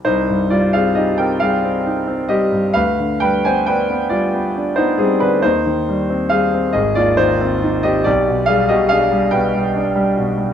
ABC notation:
X:1
M:12/8
L:1/16
Q:3/8=46
K:Cm
V:1 name="Grand piano"
[Ec]2 [Fd] [Af] [Ge] [Bg] [Af]4 [Ge]2 [=Bf]2 [Bg] [ca] [Bg]2 [Fd]3 [Ec] [CA] [DB] | [Ec]4 [Af]2 [Ae] [Fd] [Ec]3 [Ge] [Gd]2 [Af] [Ge] [Af]2 [=Bg]2 z4 |]
V:2 name="Grand piano" clef=bass
C,, G,, G, C E C G, C E C G, G,, D,, D, G, =B, D B, G, B, D B, G, D, | E,, E, G, C G, C A,,, E,, E, C E C =B,,, =B,, G, B,, D G, B,, G, D G, B,, G, |]